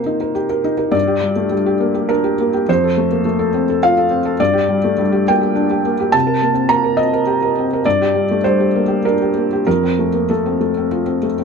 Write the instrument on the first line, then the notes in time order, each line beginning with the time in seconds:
felt piano
Already playing: C3 A#3 C4 A#4 C5
0.06 D#4
0.20 A#4
0.35 G4
0.50 A#4
0.64 D#4
0.77 A#4
0.92 G2 D5
1.07 G4
1.22 G3
1.36 A3
1.51 G3
1.66 G4
1.80 A#3
1.94 G4
2.09 D4 A#4
2.24 G4
2.40 A#3
2.54 G4
2.69 F2 C5
2.84 A4
2.97 A3
3.12 A#3
3.25 A3
3.39 A4
3.54 C4
3.70 A4
3.83 F4 F5
3.98 A4
4.11 C4
4.25 A4
4.40 G2 D5
4.53 G4
4.69 G3
4.84 A3
4.98 G3
5.12 G4
5.28 A#3 G5
5.41 G4
5.55 D4
5.71 G4
5.85 A#3
6.00 G4
6.12 C3 A5
6.27 A#4
6.42 A#3
6.54 C4
6.69 A#3 A#5
6.84 A#4
6.97 C4 D#5
7.13 A#4
7.27 G4
7.42 A#4
7.59 C4
7.73 A#4
7.85 G2 D5
8.01 G4
8.14 G3
8.31 A3
8.44 G3 C5
8.60 G4
8.75 A#3
8.88 G4
9.05 D4 A#4
9.22 G4
9.37 A#3
9.53 G4
9.67 F2 A#4
9.83 C4
9.99 A3
10.14 A#3
10.30 A3 A4
10.46 C4
10.61 A3
10.77 C4
10.91 F4
11.06 C4
11.23 A3
11.39 C4